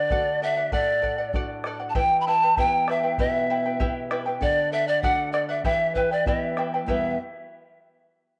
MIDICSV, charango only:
0, 0, Header, 1, 2, 480
1, 0, Start_track
1, 0, Key_signature, 1, "minor"
1, 0, Tempo, 615385
1, 566, Time_signature, 2, 2, 24, 8
1, 6550, End_track
2, 0, Start_track
2, 0, Title_t, "Charango"
2, 0, Program_c, 0, 24
2, 0, Note_on_c, 0, 74, 45
2, 0, Note_on_c, 0, 78, 56
2, 82, Note_off_c, 0, 74, 0
2, 82, Note_off_c, 0, 78, 0
2, 85, Note_on_c, 0, 69, 89
2, 91, Note_on_c, 0, 74, 90
2, 92, Note_on_c, 0, 78, 93
2, 319, Note_off_c, 0, 69, 0
2, 326, Note_off_c, 0, 74, 0
2, 329, Note_off_c, 0, 78, 0
2, 329, Note_on_c, 0, 69, 65
2, 335, Note_on_c, 0, 74, 65
2, 341, Note_on_c, 0, 78, 69
2, 436, Note_off_c, 0, 78, 0
2, 445, Note_on_c, 0, 78, 65
2, 448, Note_off_c, 0, 69, 0
2, 448, Note_off_c, 0, 74, 0
2, 457, Note_on_c, 0, 74, 47
2, 559, Note_off_c, 0, 74, 0
2, 561, Note_off_c, 0, 78, 0
2, 562, Note_on_c, 0, 69, 83
2, 568, Note_on_c, 0, 74, 82
2, 570, Note_on_c, 0, 78, 92
2, 788, Note_off_c, 0, 69, 0
2, 795, Note_off_c, 0, 74, 0
2, 797, Note_on_c, 0, 69, 66
2, 801, Note_off_c, 0, 78, 0
2, 804, Note_on_c, 0, 74, 63
2, 810, Note_on_c, 0, 78, 68
2, 912, Note_off_c, 0, 78, 0
2, 922, Note_off_c, 0, 69, 0
2, 922, Note_on_c, 0, 78, 50
2, 925, Note_off_c, 0, 74, 0
2, 936, Note_on_c, 0, 74, 46
2, 1044, Note_off_c, 0, 78, 0
2, 1046, Note_off_c, 0, 74, 0
2, 1049, Note_on_c, 0, 69, 74
2, 1057, Note_on_c, 0, 74, 87
2, 1061, Note_on_c, 0, 78, 92
2, 1281, Note_off_c, 0, 69, 0
2, 1290, Note_off_c, 0, 74, 0
2, 1290, Note_on_c, 0, 69, 72
2, 1294, Note_off_c, 0, 78, 0
2, 1299, Note_on_c, 0, 74, 79
2, 1304, Note_on_c, 0, 78, 78
2, 1393, Note_off_c, 0, 78, 0
2, 1402, Note_on_c, 0, 78, 53
2, 1404, Note_off_c, 0, 74, 0
2, 1408, Note_off_c, 0, 69, 0
2, 1413, Note_on_c, 0, 74, 47
2, 1521, Note_on_c, 0, 67, 85
2, 1522, Note_on_c, 0, 76, 85
2, 1523, Note_off_c, 0, 78, 0
2, 1524, Note_off_c, 0, 74, 0
2, 1525, Note_on_c, 0, 64, 80
2, 1526, Note_on_c, 0, 79, 79
2, 1527, Note_on_c, 0, 71, 92
2, 1762, Note_off_c, 0, 76, 0
2, 1764, Note_off_c, 0, 64, 0
2, 1764, Note_off_c, 0, 67, 0
2, 1766, Note_off_c, 0, 79, 0
2, 1767, Note_off_c, 0, 71, 0
2, 1771, Note_on_c, 0, 76, 62
2, 1773, Note_on_c, 0, 64, 75
2, 1779, Note_on_c, 0, 71, 59
2, 1779, Note_on_c, 0, 79, 76
2, 1887, Note_off_c, 0, 79, 0
2, 1889, Note_off_c, 0, 76, 0
2, 1890, Note_off_c, 0, 64, 0
2, 1890, Note_off_c, 0, 71, 0
2, 1896, Note_on_c, 0, 79, 58
2, 1899, Note_on_c, 0, 71, 48
2, 1908, Note_on_c, 0, 64, 44
2, 2003, Note_off_c, 0, 64, 0
2, 2008, Note_off_c, 0, 71, 0
2, 2010, Note_on_c, 0, 67, 81
2, 2011, Note_off_c, 0, 79, 0
2, 2011, Note_on_c, 0, 76, 82
2, 2012, Note_on_c, 0, 64, 82
2, 2017, Note_on_c, 0, 71, 91
2, 2019, Note_on_c, 0, 79, 87
2, 2235, Note_off_c, 0, 76, 0
2, 2241, Note_off_c, 0, 64, 0
2, 2245, Note_on_c, 0, 76, 60
2, 2248, Note_off_c, 0, 67, 0
2, 2248, Note_off_c, 0, 71, 0
2, 2248, Note_off_c, 0, 79, 0
2, 2251, Note_on_c, 0, 64, 61
2, 2257, Note_on_c, 0, 71, 66
2, 2257, Note_on_c, 0, 79, 70
2, 2355, Note_off_c, 0, 79, 0
2, 2359, Note_off_c, 0, 71, 0
2, 2364, Note_on_c, 0, 79, 57
2, 2365, Note_off_c, 0, 64, 0
2, 2366, Note_off_c, 0, 76, 0
2, 2369, Note_on_c, 0, 71, 50
2, 2374, Note_on_c, 0, 64, 42
2, 2484, Note_off_c, 0, 64, 0
2, 2484, Note_off_c, 0, 71, 0
2, 2485, Note_off_c, 0, 79, 0
2, 2488, Note_on_c, 0, 67, 78
2, 2488, Note_on_c, 0, 76, 73
2, 2493, Note_on_c, 0, 71, 89
2, 2494, Note_on_c, 0, 64, 89
2, 2496, Note_on_c, 0, 79, 82
2, 2720, Note_off_c, 0, 76, 0
2, 2723, Note_off_c, 0, 71, 0
2, 2724, Note_off_c, 0, 64, 0
2, 2727, Note_off_c, 0, 67, 0
2, 2730, Note_on_c, 0, 76, 66
2, 2731, Note_off_c, 0, 79, 0
2, 2732, Note_on_c, 0, 71, 76
2, 2733, Note_on_c, 0, 64, 72
2, 2739, Note_on_c, 0, 79, 68
2, 2842, Note_off_c, 0, 79, 0
2, 2848, Note_off_c, 0, 76, 0
2, 2849, Note_off_c, 0, 71, 0
2, 2850, Note_off_c, 0, 64, 0
2, 2852, Note_on_c, 0, 79, 53
2, 2859, Note_on_c, 0, 71, 46
2, 2865, Note_on_c, 0, 64, 40
2, 2959, Note_off_c, 0, 64, 0
2, 2962, Note_off_c, 0, 71, 0
2, 2963, Note_on_c, 0, 67, 90
2, 2964, Note_off_c, 0, 79, 0
2, 2965, Note_on_c, 0, 76, 81
2, 2968, Note_on_c, 0, 64, 99
2, 2971, Note_on_c, 0, 71, 80
2, 2974, Note_on_c, 0, 79, 89
2, 3194, Note_off_c, 0, 76, 0
2, 3196, Note_off_c, 0, 64, 0
2, 3199, Note_off_c, 0, 71, 0
2, 3204, Note_off_c, 0, 67, 0
2, 3204, Note_off_c, 0, 79, 0
2, 3204, Note_on_c, 0, 76, 81
2, 3206, Note_on_c, 0, 64, 75
2, 3209, Note_on_c, 0, 71, 79
2, 3213, Note_on_c, 0, 79, 82
2, 3312, Note_off_c, 0, 79, 0
2, 3321, Note_on_c, 0, 79, 60
2, 3322, Note_off_c, 0, 71, 0
2, 3325, Note_off_c, 0, 76, 0
2, 3326, Note_off_c, 0, 64, 0
2, 3331, Note_on_c, 0, 71, 55
2, 3334, Note_on_c, 0, 64, 48
2, 3440, Note_off_c, 0, 71, 0
2, 3443, Note_off_c, 0, 79, 0
2, 3443, Note_on_c, 0, 69, 82
2, 3449, Note_on_c, 0, 74, 89
2, 3450, Note_off_c, 0, 64, 0
2, 3453, Note_on_c, 0, 78, 84
2, 3673, Note_off_c, 0, 69, 0
2, 3680, Note_off_c, 0, 74, 0
2, 3682, Note_on_c, 0, 69, 72
2, 3687, Note_off_c, 0, 78, 0
2, 3689, Note_on_c, 0, 74, 72
2, 3696, Note_on_c, 0, 78, 71
2, 3795, Note_off_c, 0, 78, 0
2, 3804, Note_off_c, 0, 69, 0
2, 3804, Note_on_c, 0, 78, 50
2, 3808, Note_off_c, 0, 74, 0
2, 3817, Note_on_c, 0, 74, 44
2, 3922, Note_off_c, 0, 74, 0
2, 3923, Note_off_c, 0, 78, 0
2, 3928, Note_on_c, 0, 69, 85
2, 3931, Note_on_c, 0, 74, 94
2, 3932, Note_on_c, 0, 78, 103
2, 4152, Note_off_c, 0, 69, 0
2, 4159, Note_off_c, 0, 74, 0
2, 4161, Note_off_c, 0, 78, 0
2, 4161, Note_on_c, 0, 69, 66
2, 4168, Note_on_c, 0, 74, 72
2, 4170, Note_on_c, 0, 78, 66
2, 4271, Note_off_c, 0, 78, 0
2, 4280, Note_on_c, 0, 78, 64
2, 4283, Note_off_c, 0, 69, 0
2, 4284, Note_off_c, 0, 74, 0
2, 4294, Note_on_c, 0, 74, 51
2, 4403, Note_off_c, 0, 78, 0
2, 4403, Note_on_c, 0, 67, 77
2, 4405, Note_on_c, 0, 76, 74
2, 4406, Note_off_c, 0, 74, 0
2, 4409, Note_on_c, 0, 64, 87
2, 4409, Note_on_c, 0, 71, 75
2, 4411, Note_on_c, 0, 79, 84
2, 4639, Note_off_c, 0, 76, 0
2, 4643, Note_off_c, 0, 64, 0
2, 4644, Note_off_c, 0, 67, 0
2, 4647, Note_off_c, 0, 71, 0
2, 4648, Note_off_c, 0, 79, 0
2, 4649, Note_on_c, 0, 76, 63
2, 4653, Note_on_c, 0, 64, 65
2, 4657, Note_on_c, 0, 71, 72
2, 4662, Note_on_c, 0, 79, 70
2, 4758, Note_off_c, 0, 79, 0
2, 4764, Note_off_c, 0, 71, 0
2, 4767, Note_off_c, 0, 76, 0
2, 4767, Note_on_c, 0, 79, 53
2, 4769, Note_off_c, 0, 64, 0
2, 4773, Note_on_c, 0, 71, 47
2, 4779, Note_on_c, 0, 64, 44
2, 4885, Note_off_c, 0, 64, 0
2, 4886, Note_off_c, 0, 79, 0
2, 4887, Note_off_c, 0, 71, 0
2, 4892, Note_on_c, 0, 67, 84
2, 4892, Note_on_c, 0, 76, 78
2, 4894, Note_on_c, 0, 64, 82
2, 4897, Note_on_c, 0, 71, 84
2, 4898, Note_on_c, 0, 79, 94
2, 5119, Note_off_c, 0, 64, 0
2, 5119, Note_off_c, 0, 76, 0
2, 5127, Note_off_c, 0, 71, 0
2, 5128, Note_off_c, 0, 67, 0
2, 5128, Note_on_c, 0, 64, 65
2, 5128, Note_on_c, 0, 76, 65
2, 5129, Note_off_c, 0, 79, 0
2, 5136, Note_on_c, 0, 71, 64
2, 5138, Note_on_c, 0, 79, 65
2, 5247, Note_off_c, 0, 64, 0
2, 5247, Note_off_c, 0, 76, 0
2, 5247, Note_off_c, 0, 79, 0
2, 5251, Note_off_c, 0, 71, 0
2, 5256, Note_on_c, 0, 79, 56
2, 5262, Note_on_c, 0, 71, 55
2, 5264, Note_on_c, 0, 64, 41
2, 5366, Note_off_c, 0, 64, 0
2, 5366, Note_on_c, 0, 67, 77
2, 5371, Note_off_c, 0, 71, 0
2, 5371, Note_off_c, 0, 79, 0
2, 5371, Note_on_c, 0, 76, 83
2, 5375, Note_on_c, 0, 64, 90
2, 5380, Note_on_c, 0, 71, 79
2, 5385, Note_on_c, 0, 79, 81
2, 5557, Note_off_c, 0, 67, 0
2, 5560, Note_off_c, 0, 76, 0
2, 5562, Note_off_c, 0, 64, 0
2, 5565, Note_off_c, 0, 71, 0
2, 5567, Note_off_c, 0, 79, 0
2, 6550, End_track
0, 0, End_of_file